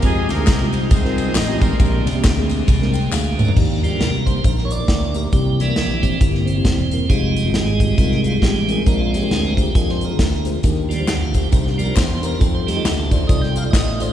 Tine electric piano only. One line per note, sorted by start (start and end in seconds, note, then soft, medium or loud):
0.04 0.30 G#3 medium
0.04 0.30 C4 medium
0.04 0.30 D#4 medium
0.04 0.30 F4 medium
0.04 0.30 G4 medium
0.39 0.52 G#3 medium
0.39 0.52 C4 medium
0.39 0.52 D#4 medium
0.39 0.53 F4 medium
0.39 0.53 G#4 medium
0.61 0.89 G#3 medium
0.61 0.89 C4 medium
0.61 0.89 D#4 medium
0.61 0.89 F4 medium
0.61 0.89 G4 medium
1.04 1.21 G#3 medium
1.04 1.21 C4 medium
1.04 1.21 D#4 medium
1.04 1.21 F4 medium
1.04 1.21 A#4 medium
1.27 1.40 G#3 medium
1.27 1.40 C4 medium
1.27 1.40 D#4 medium
1.27 1.41 F4 medium
1.27 1.41 A#4 medium
1.49 1.71 G#3 medium
1.49 1.71 C4 medium
1.49 1.71 D#4 medium
1.49 1.72 F4 medium
1.49 1.72 G4 medium
1.80 2.46 A#2 medium
1.80 2.06 G#3 medium
1.80 2.06 A#3 medium
1.80 2.07 C4 medium
1.80 2.07 D4 medium
1.80 2.07 G4 medium
2.15 2.28 G#3 medium
2.15 2.29 A#3 medium
2.15 2.28 C4 medium
2.15 2.29 D4 medium
2.15 2.29 G4 medium
2.38 2.66 G#3 medium
2.38 2.66 A#3 medium
2.38 2.66 C4 medium
2.38 2.66 D4 medium
2.38 2.66 G#4 loud
2.81 2.97 G#3 medium
2.81 2.98 A#3 medium
2.81 2.98 C4 medium
2.81 2.98 D4 medium
2.81 2.98 A#4 medium
2.94 3.11 G5 medium
3.12 3.37 F5 medium
3.38 3.80 C5 medium
3.57 4.23 D#3 medium
3.57 3.83 A#3 medium
3.57 3.83 D4 medium
3.57 3.84 D#4 medium
3.57 3.84 G4 medium
3.91 4.14 A#3 medium
3.91 4.14 D4 medium
3.91 4.14 D#4 medium
3.91 4.15 A#4 medium
4.27 4.39 A#3 medium
4.27 4.39 D4 medium
4.27 4.39 D#4 medium
4.27 4.39 G4 medium
4.45 4.71 A#3 medium
4.45 4.71 D4 medium
4.45 4.71 D#4 medium
4.45 4.72 A#4 medium
4.79 5.02 A#3 medium
4.79 5.02 D4 medium
4.79 5.02 D#4 medium
4.79 5.03 A#4 medium
5.15 5.27 A#3 medium
5.15 5.27 D4 medium
5.15 5.27 D#4 medium
5.15 5.28 G4 medium
5.33 6.00 C3 medium
5.33 5.59 A#3 medium
5.33 5.60 C4 medium
5.33 5.60 E4 medium
5.33 5.60 G4 medium
5.68 5.91 A#3 medium
5.68 5.91 C4 medium
5.68 5.91 E4 medium
5.68 5.91 A#4 medium
6.03 6.15 A#3 medium
6.03 6.15 C4 medium
6.03 6.16 E4 medium
6.03 6.16 G4 medium
6.21 6.48 A#3 medium
6.21 6.48 C4 medium
6.21 6.48 E4 medium
6.21 6.48 G4 medium
6.57 6.79 A#3 medium
6.57 6.79 C4 medium
6.57 6.80 E4 medium
6.57 6.80 G4 medium
6.92 7.04 A#3 medium
6.92 7.05 C4 medium
6.92 7.05 E4 medium
6.92 7.05 A#4 medium
7.10 7.36 C4 medium
7.10 7.37 D#4 medium
7.10 7.37 F4 medium
7.10 7.37 G#4 medium
7.44 7.67 C4 medium
7.44 7.68 D#4 medium
7.44 7.68 F4 medium
7.44 7.68 G#4 medium
7.81 7.93 C4 medium
7.81 7.93 D#4 medium
7.81 7.93 F4 medium
7.81 7.94 G#4 medium
7.99 8.25 C4 medium
7.99 8.26 D#4 medium
7.99 8.26 F4 medium
7.99 8.26 A#4 medium
8.34 8.56 C4 medium
8.34 8.56 D#4 medium
8.34 8.57 F4 medium
8.34 8.57 G4 medium
8.69 8.81 C4 medium
8.69 8.81 D#4 medium
8.69 8.81 F4 medium
8.69 8.82 A#4 medium
8.86 9.53 A#2 medium
8.86 9.13 D4 medium
8.86 9.13 F4 medium
8.86 9.14 G#4 medium
8.86 9.14 A#4 medium
9.21 9.44 D4 medium
9.21 9.45 F4 medium
9.21 9.45 G#4 medium
9.21 9.45 A#4 medium
9.57 9.70 D4 medium
9.57 9.70 F4 medium
9.57 9.70 G#4 medium
9.57 9.70 C5 medium
9.75 10.02 D4 medium
9.75 10.02 F4 medium
9.75 10.02 G#4 medium
9.75 10.02 A#4 medium
10.10 10.33 D4 medium
10.10 10.33 F4 medium
10.10 10.33 G#4 medium
10.10 10.33 A#4 medium
10.45 10.58 D4 medium
10.45 10.58 F4 medium
10.45 10.58 G#4 medium
10.45 10.58 C5 medium
10.64 11.31 D#3 medium
10.64 10.90 D4 medium
10.64 10.91 D#4 medium
10.64 10.91 G4 medium
10.64 10.91 A#4 medium
10.98 11.21 D4 medium
10.98 11.22 D#4 medium
10.98 11.22 G4 medium
10.98 11.22 C5 medium
11.34 11.46 D4 medium
11.34 11.46 D#4 medium
11.34 11.47 G4 medium
11.34 11.47 C5 medium
11.51 11.78 D4 medium
11.51 11.79 D#4 medium
11.51 11.79 G4 medium
11.51 11.79 C5 medium
11.87 12.10 D4 medium
11.87 12.10 D#4 medium
11.87 12.10 G4 medium
11.87 12.10 C5 medium
12.21 12.34 D4 medium
12.21 12.35 D#4 medium
12.21 12.35 G4 medium
12.21 12.35 A#4 medium
12.39 12.67 D#4 medium
12.39 12.67 F4 medium
12.39 12.67 A4 medium
12.39 12.67 C5 medium
12.76 12.99 D#4 medium
12.76 12.99 F4 medium
12.76 12.99 A4 medium
12.76 12.99 D#5 medium
13.11 13.23 D#4 medium
13.11 13.24 F4 medium
13.11 13.24 A4 medium
13.11 13.24 D5 medium
13.27 13.55 D#4 medium
13.27 13.55 F4 medium
13.27 13.56 A4 medium
13.27 13.56 D5 medium
13.64 13.87 D#4 medium
13.64 13.87 F4 medium
13.64 13.87 A4 medium
13.64 13.88 D5 medium
14.00 14.12 D#4 medium
14.00 14.12 F4 medium
14.00 14.12 A4 medium
14.00 14.13 D5 medium